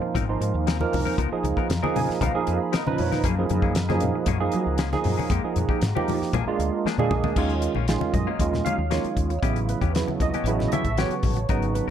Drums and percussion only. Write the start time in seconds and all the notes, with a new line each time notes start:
0.15 kick, closed hi-hat, low conga
0.42 closed hi-hat
0.67 snare, closed hi-hat
0.80 high conga
0.93 open hi-hat, low conga
1.07 high conga
1.18 kick, closed hi-hat
1.45 closed hi-hat, high conga
1.57 kick
1.70 snare, closed hi-hat
1.84 high conga
1.96 open hi-hat, low conga
2.10 snare
2.21 kick, closed hi-hat, low conga
2.47 closed hi-hat
2.73 snare, closed hi-hat
2.87 high conga
2.98 open hi-hat, low conga
3.12 snare, high conga
3.24 kick, closed hi-hat
3.49 closed hi-hat, high conga
3.62 kick
3.75 snare, closed hi-hat
3.89 snare, high conga
4.00 closed hi-hat, low conga
4.26 kick, closed hi-hat, low conga
4.52 closed hi-hat
4.78 snare, closed hi-hat
4.92 snare, high conga
5.04 open hi-hat, low conga
5.19 high conga
5.30 kick, closed hi-hat
5.56 closed hi-hat, low conga
5.69 kick
5.82 snare, closed hi-hat
5.97 high conga
6.08 open hi-hat, low conga
6.22 snare
6.33 kick, closed hi-hat, high conga, low conga
6.60 closed hi-hat
6.87 snare
6.99 high conga
7.11 mid tom, low conga
7.24 floor tom, high conga
7.36 kick, crash
7.49 closed hi-hat
7.62 closed hi-hat
7.75 high conga
7.88 snare, closed hi-hat
8.01 high conga
8.14 kick, closed hi-hat, low conga
8.39 kick, closed hi-hat
8.54 snare, low conga
8.66 closed hi-hat, high conga
8.91 snare, closed hi-hat
9.04 closed hi-hat
9.17 kick, closed hi-hat
9.30 closed hi-hat
9.43 kick, closed hi-hat
9.56 closed hi-hat
9.69 closed hi-hat
9.82 kick, closed hi-hat, high conga
9.95 snare, closed hi-hat
10.08 high conga
10.20 kick, closed hi-hat, low conga
10.34 closed hi-hat
10.46 closed hi-hat
10.60 snare, low conga
10.72 closed hi-hat, high conga
10.84 kick, closed hi-hat
10.98 snare, closed hi-hat
11.11 closed hi-hat
11.23 kick, open hi-hat, low conga
11.36 closed hi-hat
11.49 kick, closed hi-hat
11.62 closed hi-hat
11.75 closed hi-hat